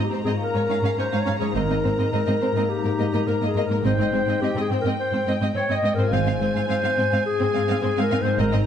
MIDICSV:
0, 0, Header, 1, 8, 480
1, 0, Start_track
1, 0, Tempo, 570342
1, 1308, Time_signature, 4, 2, 24, 8
1, 7291, End_track
2, 0, Start_track
2, 0, Title_t, "Violin section"
2, 0, Program_c, 0, 48
2, 0, Note_on_c, 0, 82, 29
2, 3195, Note_off_c, 0, 82, 0
2, 3224, Note_on_c, 0, 79, 32
2, 5143, Note_off_c, 0, 79, 0
2, 5145, Note_on_c, 0, 80, 35
2, 7025, Note_off_c, 0, 80, 0
2, 7064, Note_on_c, 0, 82, 44
2, 7291, Note_off_c, 0, 82, 0
2, 7291, End_track
3, 0, Start_track
3, 0, Title_t, "Violin section"
3, 0, Program_c, 1, 48
3, 110, Note_on_c, 1, 72, 28
3, 156, Note_off_c, 1, 72, 0
3, 218, Note_on_c, 1, 75, 40
3, 267, Note_off_c, 1, 75, 0
3, 466, Note_on_c, 1, 73, 28
3, 514, Note_off_c, 1, 73, 0
3, 589, Note_on_c, 1, 77, 36
3, 636, Note_off_c, 1, 77, 0
3, 712, Note_on_c, 1, 77, 31
3, 759, Note_off_c, 1, 77, 0
3, 829, Note_on_c, 1, 73, 28
3, 876, Note_off_c, 1, 73, 0
3, 944, Note_on_c, 1, 77, 37
3, 993, Note_off_c, 1, 77, 0
3, 1068, Note_on_c, 1, 77, 28
3, 1116, Note_off_c, 1, 77, 0
3, 1181, Note_on_c, 1, 73, 30
3, 1230, Note_off_c, 1, 73, 0
3, 1310, Note_on_c, 1, 75, 33
3, 1358, Note_off_c, 1, 75, 0
3, 1437, Note_on_c, 1, 75, 22
3, 1483, Note_off_c, 1, 75, 0
3, 1556, Note_on_c, 1, 72, 27
3, 1602, Note_off_c, 1, 72, 0
3, 1674, Note_on_c, 1, 75, 28
3, 1721, Note_off_c, 1, 75, 0
3, 1791, Note_on_c, 1, 75, 37
3, 1839, Note_off_c, 1, 75, 0
3, 1908, Note_on_c, 1, 75, 26
3, 1956, Note_off_c, 1, 75, 0
3, 2030, Note_on_c, 1, 72, 25
3, 2077, Note_off_c, 1, 72, 0
3, 2154, Note_on_c, 1, 75, 36
3, 2201, Note_off_c, 1, 75, 0
3, 2397, Note_on_c, 1, 70, 30
3, 2444, Note_off_c, 1, 70, 0
3, 2520, Note_on_c, 1, 75, 35
3, 2566, Note_off_c, 1, 75, 0
3, 2641, Note_on_c, 1, 75, 30
3, 2687, Note_off_c, 1, 75, 0
3, 2759, Note_on_c, 1, 70, 30
3, 2805, Note_off_c, 1, 70, 0
3, 2881, Note_on_c, 1, 75, 42
3, 2926, Note_off_c, 1, 75, 0
3, 3003, Note_on_c, 1, 75, 32
3, 3048, Note_off_c, 1, 75, 0
3, 3128, Note_on_c, 1, 70, 34
3, 3172, Note_off_c, 1, 70, 0
3, 3243, Note_on_c, 1, 75, 38
3, 3289, Note_off_c, 1, 75, 0
3, 3373, Note_on_c, 1, 75, 26
3, 3416, Note_off_c, 1, 75, 0
3, 3496, Note_on_c, 1, 72, 26
3, 3539, Note_off_c, 1, 72, 0
3, 3606, Note_on_c, 1, 75, 26
3, 3651, Note_off_c, 1, 75, 0
3, 3732, Note_on_c, 1, 75, 37
3, 3776, Note_off_c, 1, 75, 0
3, 3850, Note_on_c, 1, 75, 32
3, 3894, Note_off_c, 1, 75, 0
3, 3974, Note_on_c, 1, 72, 31
3, 4017, Note_off_c, 1, 72, 0
3, 4082, Note_on_c, 1, 75, 38
3, 4128, Note_off_c, 1, 75, 0
3, 4315, Note_on_c, 1, 72, 33
3, 4362, Note_off_c, 1, 72, 0
3, 4443, Note_on_c, 1, 75, 41
3, 4488, Note_off_c, 1, 75, 0
3, 4563, Note_on_c, 1, 75, 34
3, 4608, Note_off_c, 1, 75, 0
3, 4687, Note_on_c, 1, 72, 35
3, 4731, Note_off_c, 1, 72, 0
3, 4801, Note_on_c, 1, 75, 47
3, 4846, Note_off_c, 1, 75, 0
3, 4922, Note_on_c, 1, 75, 37
3, 4967, Note_off_c, 1, 75, 0
3, 5037, Note_on_c, 1, 72, 36
3, 5083, Note_off_c, 1, 72, 0
3, 5158, Note_on_c, 1, 77, 42
3, 5203, Note_off_c, 1, 77, 0
3, 5277, Note_on_c, 1, 77, 29
3, 5322, Note_off_c, 1, 77, 0
3, 5396, Note_on_c, 1, 72, 26
3, 5442, Note_off_c, 1, 72, 0
3, 5517, Note_on_c, 1, 77, 35
3, 5562, Note_off_c, 1, 77, 0
3, 5637, Note_on_c, 1, 77, 45
3, 5682, Note_off_c, 1, 77, 0
3, 5757, Note_on_c, 1, 77, 35
3, 5802, Note_off_c, 1, 77, 0
3, 5879, Note_on_c, 1, 72, 31
3, 5923, Note_off_c, 1, 72, 0
3, 5996, Note_on_c, 1, 77, 43
3, 6041, Note_off_c, 1, 77, 0
3, 6231, Note_on_c, 1, 72, 35
3, 6277, Note_off_c, 1, 72, 0
3, 6348, Note_on_c, 1, 77, 42
3, 6395, Note_off_c, 1, 77, 0
3, 6476, Note_on_c, 1, 77, 43
3, 6521, Note_off_c, 1, 77, 0
3, 6584, Note_on_c, 1, 72, 35
3, 6631, Note_off_c, 1, 72, 0
3, 6712, Note_on_c, 1, 77, 44
3, 6757, Note_off_c, 1, 77, 0
3, 6826, Note_on_c, 1, 77, 36
3, 6873, Note_off_c, 1, 77, 0
3, 6943, Note_on_c, 1, 72, 39
3, 6990, Note_off_c, 1, 72, 0
3, 7059, Note_on_c, 1, 75, 52
3, 7107, Note_off_c, 1, 75, 0
3, 7175, Note_on_c, 1, 75, 31
3, 7224, Note_off_c, 1, 75, 0
3, 7291, End_track
4, 0, Start_track
4, 0, Title_t, "Clarinet"
4, 0, Program_c, 2, 71
4, 39, Note_on_c, 2, 67, 37
4, 190, Note_off_c, 2, 67, 0
4, 202, Note_on_c, 2, 68, 39
4, 270, Note_off_c, 2, 68, 0
4, 351, Note_on_c, 2, 70, 51
4, 820, Note_off_c, 2, 70, 0
4, 834, Note_on_c, 2, 72, 47
4, 1010, Note_on_c, 2, 73, 42
4, 1023, Note_off_c, 2, 72, 0
4, 1159, Note_off_c, 2, 73, 0
4, 1165, Note_on_c, 2, 68, 37
4, 1307, Note_off_c, 2, 68, 0
4, 1312, Note_on_c, 2, 70, 44
4, 1781, Note_off_c, 2, 70, 0
4, 1788, Note_on_c, 2, 70, 49
4, 2268, Note_on_c, 2, 67, 49
4, 2281, Note_off_c, 2, 70, 0
4, 2752, Note_on_c, 2, 70, 48
4, 2764, Note_off_c, 2, 67, 0
4, 2911, Note_off_c, 2, 70, 0
4, 2923, Note_on_c, 2, 68, 42
4, 3073, Note_off_c, 2, 68, 0
4, 3079, Note_on_c, 2, 70, 43
4, 3231, Note_off_c, 2, 70, 0
4, 3242, Note_on_c, 2, 72, 50
4, 3713, Note_on_c, 2, 67, 49
4, 3726, Note_off_c, 2, 72, 0
4, 3872, Note_off_c, 2, 67, 0
4, 3878, Note_on_c, 2, 68, 44
4, 3948, Note_off_c, 2, 68, 0
4, 4047, Note_on_c, 2, 70, 47
4, 4115, Note_off_c, 2, 70, 0
4, 4197, Note_on_c, 2, 72, 55
4, 4498, Note_off_c, 2, 72, 0
4, 4674, Note_on_c, 2, 73, 57
4, 4819, Note_off_c, 2, 73, 0
4, 4855, Note_on_c, 2, 75, 49
4, 5004, Note_on_c, 2, 70, 46
4, 5016, Note_off_c, 2, 75, 0
4, 5156, Note_on_c, 2, 72, 46
4, 5168, Note_off_c, 2, 70, 0
4, 5617, Note_off_c, 2, 72, 0
4, 5622, Note_on_c, 2, 72, 59
4, 6091, Note_off_c, 2, 72, 0
4, 6111, Note_on_c, 2, 68, 61
4, 6576, Note_off_c, 2, 68, 0
4, 6581, Note_on_c, 2, 68, 61
4, 6737, Note_off_c, 2, 68, 0
4, 6750, Note_on_c, 2, 70, 54
4, 6918, Note_on_c, 2, 72, 54
4, 6931, Note_off_c, 2, 70, 0
4, 7069, Note_off_c, 2, 72, 0
4, 7072, Note_on_c, 2, 70, 54
4, 7177, Note_off_c, 2, 70, 0
4, 7291, End_track
5, 0, Start_track
5, 0, Title_t, "Harp"
5, 0, Program_c, 3, 46
5, 0, Note_on_c, 3, 44, 27
5, 0, Note_on_c, 3, 58, 23
5, 0, Note_on_c, 3, 63, 23
5, 0, Note_on_c, 3, 72, 21
5, 182, Note_off_c, 3, 44, 0
5, 192, Note_on_c, 3, 44, 27
5, 221, Note_off_c, 3, 58, 0
5, 231, Note_on_c, 3, 58, 24
5, 270, Note_on_c, 3, 65, 23
5, 308, Note_on_c, 3, 73, 23
5, 325, Note_off_c, 3, 63, 0
5, 344, Note_off_c, 3, 72, 0
5, 1151, Note_off_c, 3, 44, 0
5, 1161, Note_on_c, 3, 44, 28
5, 1189, Note_off_c, 3, 58, 0
5, 1199, Note_on_c, 3, 58, 24
5, 1236, Note_on_c, 3, 63, 25
5, 1272, Note_on_c, 3, 72, 26
5, 1291, Note_off_c, 3, 65, 0
5, 1310, Note_off_c, 3, 73, 0
5, 2107, Note_off_c, 3, 44, 0
5, 2117, Note_on_c, 3, 44, 29
5, 2145, Note_off_c, 3, 58, 0
5, 2156, Note_on_c, 3, 58, 25
5, 2183, Note_off_c, 3, 63, 0
5, 2193, Note_on_c, 3, 63, 23
5, 2232, Note_on_c, 3, 70, 23
5, 2271, Note_off_c, 3, 72, 0
5, 3065, Note_off_c, 3, 44, 0
5, 3075, Note_on_c, 3, 44, 32
5, 3112, Note_on_c, 3, 60, 26
5, 3141, Note_off_c, 3, 63, 0
5, 3151, Note_on_c, 3, 63, 26
5, 3188, Note_on_c, 3, 67, 27
5, 3192, Note_off_c, 3, 58, 0
5, 3230, Note_off_c, 3, 70, 0
5, 4984, Note_off_c, 3, 44, 0
5, 4995, Note_on_c, 3, 44, 34
5, 5024, Note_off_c, 3, 60, 0
5, 5034, Note_on_c, 3, 60, 29
5, 5071, Note_on_c, 3, 65, 29
5, 5111, Note_on_c, 3, 68, 27
5, 5125, Note_off_c, 3, 63, 0
5, 5144, Note_off_c, 3, 67, 0
5, 6896, Note_off_c, 3, 44, 0
5, 6906, Note_on_c, 3, 44, 40
5, 6944, Note_on_c, 3, 58, 33
5, 6981, Note_on_c, 3, 63, 35
5, 7013, Note_off_c, 3, 68, 0
5, 7023, Note_on_c, 3, 68, 32
5, 7041, Note_off_c, 3, 65, 0
5, 7291, Note_off_c, 3, 44, 0
5, 7291, Note_off_c, 3, 58, 0
5, 7291, Note_off_c, 3, 60, 0
5, 7291, Note_off_c, 3, 63, 0
5, 7291, Note_off_c, 3, 68, 0
5, 7291, End_track
6, 0, Start_track
6, 0, Title_t, "Viola section"
6, 0, Program_c, 4, 48
6, 84, Note_on_c, 4, 60, 27
6, 136, Note_off_c, 4, 60, 0
6, 208, Note_on_c, 4, 60, 42
6, 259, Note_off_c, 4, 60, 0
6, 452, Note_on_c, 4, 61, 24
6, 502, Note_off_c, 4, 61, 0
6, 575, Note_on_c, 4, 61, 35
6, 625, Note_off_c, 4, 61, 0
6, 701, Note_on_c, 4, 61, 30
6, 750, Note_off_c, 4, 61, 0
6, 821, Note_on_c, 4, 61, 28
6, 870, Note_off_c, 4, 61, 0
6, 941, Note_on_c, 4, 61, 38
6, 990, Note_off_c, 4, 61, 0
6, 1057, Note_on_c, 4, 61, 26
6, 1107, Note_off_c, 4, 61, 0
6, 1180, Note_on_c, 4, 61, 30
6, 1229, Note_off_c, 4, 61, 0
6, 1304, Note_on_c, 4, 60, 36
6, 1353, Note_off_c, 4, 60, 0
6, 1418, Note_on_c, 4, 60, 25
6, 1468, Note_off_c, 4, 60, 0
6, 1542, Note_on_c, 4, 60, 26
6, 1591, Note_off_c, 4, 60, 0
6, 1664, Note_on_c, 4, 60, 22
6, 1713, Note_off_c, 4, 60, 0
6, 1788, Note_on_c, 4, 60, 39
6, 1836, Note_off_c, 4, 60, 0
6, 1910, Note_on_c, 4, 60, 26
6, 1958, Note_off_c, 4, 60, 0
6, 2026, Note_on_c, 4, 60, 30
6, 2074, Note_off_c, 4, 60, 0
6, 2154, Note_on_c, 4, 60, 38
6, 2201, Note_off_c, 4, 60, 0
6, 2390, Note_on_c, 4, 58, 29
6, 2438, Note_off_c, 4, 58, 0
6, 2509, Note_on_c, 4, 58, 38
6, 2558, Note_off_c, 4, 58, 0
6, 2636, Note_on_c, 4, 58, 28
6, 2683, Note_off_c, 4, 58, 0
6, 2754, Note_on_c, 4, 58, 28
6, 2801, Note_off_c, 4, 58, 0
6, 2876, Note_on_c, 4, 58, 42
6, 2923, Note_off_c, 4, 58, 0
6, 2997, Note_on_c, 4, 58, 30
6, 3043, Note_off_c, 4, 58, 0
6, 3116, Note_on_c, 4, 58, 33
6, 3163, Note_off_c, 4, 58, 0
6, 3239, Note_on_c, 4, 60, 40
6, 3285, Note_off_c, 4, 60, 0
6, 3355, Note_on_c, 4, 60, 27
6, 3402, Note_off_c, 4, 60, 0
6, 3469, Note_on_c, 4, 60, 29
6, 3517, Note_off_c, 4, 60, 0
6, 3595, Note_on_c, 4, 60, 24
6, 3642, Note_off_c, 4, 60, 0
6, 3714, Note_on_c, 4, 60, 40
6, 3761, Note_off_c, 4, 60, 0
6, 3834, Note_on_c, 4, 60, 30
6, 3881, Note_off_c, 4, 60, 0
6, 3958, Note_on_c, 4, 60, 29
6, 4004, Note_off_c, 4, 60, 0
6, 4079, Note_on_c, 4, 60, 40
6, 4125, Note_off_c, 4, 60, 0
6, 4313, Note_on_c, 4, 60, 31
6, 4360, Note_off_c, 4, 60, 0
6, 4434, Note_on_c, 4, 60, 43
6, 4481, Note_off_c, 4, 60, 0
6, 4547, Note_on_c, 4, 60, 36
6, 4595, Note_off_c, 4, 60, 0
6, 4666, Note_on_c, 4, 60, 33
6, 4714, Note_off_c, 4, 60, 0
6, 4781, Note_on_c, 4, 60, 42
6, 4830, Note_off_c, 4, 60, 0
6, 4906, Note_on_c, 4, 60, 33
6, 4954, Note_off_c, 4, 60, 0
6, 5025, Note_on_c, 4, 60, 35
6, 5073, Note_off_c, 4, 60, 0
6, 5147, Note_on_c, 4, 60, 45
6, 5195, Note_off_c, 4, 60, 0
6, 5268, Note_on_c, 4, 60, 31
6, 5315, Note_off_c, 4, 60, 0
6, 5391, Note_on_c, 4, 60, 33
6, 5438, Note_off_c, 4, 60, 0
6, 5510, Note_on_c, 4, 60, 28
6, 5557, Note_off_c, 4, 60, 0
6, 5627, Note_on_c, 4, 60, 42
6, 5674, Note_off_c, 4, 60, 0
6, 5742, Note_on_c, 4, 60, 34
6, 5790, Note_off_c, 4, 60, 0
6, 5865, Note_on_c, 4, 60, 31
6, 5912, Note_off_c, 4, 60, 0
6, 5988, Note_on_c, 4, 60, 47
6, 6035, Note_off_c, 4, 60, 0
6, 6219, Note_on_c, 4, 60, 36
6, 6268, Note_off_c, 4, 60, 0
6, 6344, Note_on_c, 4, 60, 47
6, 6392, Note_off_c, 4, 60, 0
6, 6462, Note_on_c, 4, 60, 37
6, 6509, Note_off_c, 4, 60, 0
6, 6577, Note_on_c, 4, 60, 39
6, 6625, Note_off_c, 4, 60, 0
6, 6700, Note_on_c, 4, 60, 46
6, 6748, Note_off_c, 4, 60, 0
6, 6821, Note_on_c, 4, 60, 40
6, 6869, Note_off_c, 4, 60, 0
6, 6930, Note_on_c, 4, 60, 42
6, 6980, Note_off_c, 4, 60, 0
6, 7052, Note_on_c, 4, 60, 51
6, 7101, Note_off_c, 4, 60, 0
6, 7167, Note_on_c, 4, 60, 34
6, 7217, Note_off_c, 4, 60, 0
6, 7291, End_track
7, 0, Start_track
7, 0, Title_t, "Cello section"
7, 0, Program_c, 5, 48
7, 93, Note_on_c, 5, 44, 27
7, 143, Note_off_c, 5, 44, 0
7, 216, Note_on_c, 5, 44, 36
7, 266, Note_off_c, 5, 44, 0
7, 462, Note_on_c, 5, 44, 24
7, 510, Note_off_c, 5, 44, 0
7, 576, Note_on_c, 5, 44, 36
7, 626, Note_off_c, 5, 44, 0
7, 695, Note_on_c, 5, 44, 27
7, 745, Note_off_c, 5, 44, 0
7, 816, Note_on_c, 5, 44, 26
7, 866, Note_off_c, 5, 44, 0
7, 942, Note_on_c, 5, 44, 42
7, 991, Note_off_c, 5, 44, 0
7, 1067, Note_on_c, 5, 44, 28
7, 1116, Note_off_c, 5, 44, 0
7, 1189, Note_on_c, 5, 44, 28
7, 1237, Note_off_c, 5, 44, 0
7, 1306, Note_on_c, 5, 44, 36
7, 1355, Note_off_c, 5, 44, 0
7, 1430, Note_on_c, 5, 44, 27
7, 1477, Note_off_c, 5, 44, 0
7, 1554, Note_on_c, 5, 44, 27
7, 1601, Note_off_c, 5, 44, 0
7, 1672, Note_on_c, 5, 44, 28
7, 1719, Note_off_c, 5, 44, 0
7, 1788, Note_on_c, 5, 44, 41
7, 1837, Note_off_c, 5, 44, 0
7, 1909, Note_on_c, 5, 44, 29
7, 1957, Note_off_c, 5, 44, 0
7, 2025, Note_on_c, 5, 44, 26
7, 2074, Note_off_c, 5, 44, 0
7, 2151, Note_on_c, 5, 44, 37
7, 2199, Note_off_c, 5, 44, 0
7, 2390, Note_on_c, 5, 44, 27
7, 2438, Note_off_c, 5, 44, 0
7, 2514, Note_on_c, 5, 44, 39
7, 2561, Note_off_c, 5, 44, 0
7, 2633, Note_on_c, 5, 44, 28
7, 2680, Note_off_c, 5, 44, 0
7, 2750, Note_on_c, 5, 44, 29
7, 2798, Note_off_c, 5, 44, 0
7, 2870, Note_on_c, 5, 44, 41
7, 2918, Note_off_c, 5, 44, 0
7, 2985, Note_on_c, 5, 44, 31
7, 3034, Note_off_c, 5, 44, 0
7, 3105, Note_on_c, 5, 44, 28
7, 3154, Note_off_c, 5, 44, 0
7, 3223, Note_on_c, 5, 44, 36
7, 3272, Note_off_c, 5, 44, 0
7, 3348, Note_on_c, 5, 44, 29
7, 3396, Note_off_c, 5, 44, 0
7, 3466, Note_on_c, 5, 44, 29
7, 3515, Note_off_c, 5, 44, 0
7, 3588, Note_on_c, 5, 44, 27
7, 3637, Note_off_c, 5, 44, 0
7, 3708, Note_on_c, 5, 44, 42
7, 3756, Note_off_c, 5, 44, 0
7, 3829, Note_on_c, 5, 44, 29
7, 3877, Note_off_c, 5, 44, 0
7, 3955, Note_on_c, 5, 44, 28
7, 4002, Note_off_c, 5, 44, 0
7, 4071, Note_on_c, 5, 44, 39
7, 4119, Note_off_c, 5, 44, 0
7, 4314, Note_on_c, 5, 44, 29
7, 4361, Note_off_c, 5, 44, 0
7, 4428, Note_on_c, 5, 44, 39
7, 4476, Note_off_c, 5, 44, 0
7, 4551, Note_on_c, 5, 44, 31
7, 4598, Note_off_c, 5, 44, 0
7, 4666, Note_on_c, 5, 44, 28
7, 4714, Note_off_c, 5, 44, 0
7, 4788, Note_on_c, 5, 44, 45
7, 4835, Note_off_c, 5, 44, 0
7, 4908, Note_on_c, 5, 44, 31
7, 4955, Note_off_c, 5, 44, 0
7, 5029, Note_on_c, 5, 44, 32
7, 5076, Note_off_c, 5, 44, 0
7, 5149, Note_on_c, 5, 44, 43
7, 5196, Note_off_c, 5, 44, 0
7, 5268, Note_on_c, 5, 44, 31
7, 5316, Note_off_c, 5, 44, 0
7, 5387, Note_on_c, 5, 44, 34
7, 5434, Note_off_c, 5, 44, 0
7, 5508, Note_on_c, 5, 44, 33
7, 5555, Note_off_c, 5, 44, 0
7, 5622, Note_on_c, 5, 44, 49
7, 5670, Note_off_c, 5, 44, 0
7, 5747, Note_on_c, 5, 44, 33
7, 5794, Note_off_c, 5, 44, 0
7, 5869, Note_on_c, 5, 44, 34
7, 5915, Note_off_c, 5, 44, 0
7, 5989, Note_on_c, 5, 44, 45
7, 6036, Note_off_c, 5, 44, 0
7, 6232, Note_on_c, 5, 44, 34
7, 6278, Note_off_c, 5, 44, 0
7, 6351, Note_on_c, 5, 44, 52
7, 6397, Note_off_c, 5, 44, 0
7, 6467, Note_on_c, 5, 44, 33
7, 6514, Note_off_c, 5, 44, 0
7, 6586, Note_on_c, 5, 44, 37
7, 6633, Note_off_c, 5, 44, 0
7, 6706, Note_on_c, 5, 44, 54
7, 6752, Note_off_c, 5, 44, 0
7, 6824, Note_on_c, 5, 44, 36
7, 6871, Note_off_c, 5, 44, 0
7, 6941, Note_on_c, 5, 44, 37
7, 6989, Note_off_c, 5, 44, 0
7, 7059, Note_on_c, 5, 44, 50
7, 7107, Note_off_c, 5, 44, 0
7, 7181, Note_on_c, 5, 44, 34
7, 7229, Note_off_c, 5, 44, 0
7, 7291, End_track
8, 0, Start_track
8, 0, Title_t, "Double bass section"
8, 0, Program_c, 6, 48
8, 1304, Note_on_c, 6, 32, 37
8, 1418, Note_off_c, 6, 32, 0
8, 3225, Note_on_c, 6, 32, 39
8, 3339, Note_off_c, 6, 32, 0
8, 5146, Note_on_c, 6, 32, 42
8, 5257, Note_off_c, 6, 32, 0
8, 7058, Note_on_c, 6, 32, 51
8, 7170, Note_off_c, 6, 32, 0
8, 7291, End_track
0, 0, End_of_file